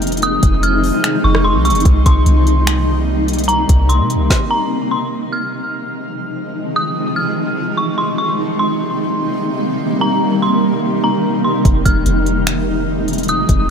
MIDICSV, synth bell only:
0, 0, Header, 1, 2, 480
1, 0, Start_track
1, 0, Key_signature, -4, "minor"
1, 0, Tempo, 408163
1, 261, Time_signature, 4, 2, 24, 8
1, 16112, End_track
2, 0, Start_track
2, 0, Title_t, "Synth bell"
2, 0, Program_c, 0, 98
2, 270, Note_on_c, 0, 87, 113
2, 717, Note_off_c, 0, 87, 0
2, 742, Note_on_c, 0, 89, 88
2, 1418, Note_off_c, 0, 89, 0
2, 1462, Note_on_c, 0, 85, 84
2, 1690, Note_off_c, 0, 85, 0
2, 1699, Note_on_c, 0, 84, 84
2, 1928, Note_off_c, 0, 84, 0
2, 1941, Note_on_c, 0, 85, 89
2, 2169, Note_off_c, 0, 85, 0
2, 2423, Note_on_c, 0, 84, 83
2, 3575, Note_off_c, 0, 84, 0
2, 4092, Note_on_c, 0, 82, 105
2, 4547, Note_off_c, 0, 82, 0
2, 4576, Note_on_c, 0, 84, 82
2, 5255, Note_off_c, 0, 84, 0
2, 5299, Note_on_c, 0, 82, 79
2, 5751, Note_off_c, 0, 82, 0
2, 5779, Note_on_c, 0, 84, 66
2, 6008, Note_off_c, 0, 84, 0
2, 6262, Note_on_c, 0, 89, 75
2, 7415, Note_off_c, 0, 89, 0
2, 7951, Note_on_c, 0, 87, 111
2, 8398, Note_off_c, 0, 87, 0
2, 8422, Note_on_c, 0, 89, 89
2, 9099, Note_off_c, 0, 89, 0
2, 9143, Note_on_c, 0, 85, 83
2, 9370, Note_off_c, 0, 85, 0
2, 9382, Note_on_c, 0, 84, 86
2, 9610, Note_off_c, 0, 84, 0
2, 9623, Note_on_c, 0, 85, 91
2, 9850, Note_off_c, 0, 85, 0
2, 10106, Note_on_c, 0, 84, 87
2, 11257, Note_off_c, 0, 84, 0
2, 11775, Note_on_c, 0, 82, 107
2, 12229, Note_off_c, 0, 82, 0
2, 12259, Note_on_c, 0, 84, 84
2, 12937, Note_off_c, 0, 84, 0
2, 12980, Note_on_c, 0, 82, 86
2, 13432, Note_off_c, 0, 82, 0
2, 13459, Note_on_c, 0, 84, 69
2, 13688, Note_off_c, 0, 84, 0
2, 13941, Note_on_c, 0, 89, 77
2, 15094, Note_off_c, 0, 89, 0
2, 15629, Note_on_c, 0, 87, 112
2, 16077, Note_off_c, 0, 87, 0
2, 16112, End_track
0, 0, End_of_file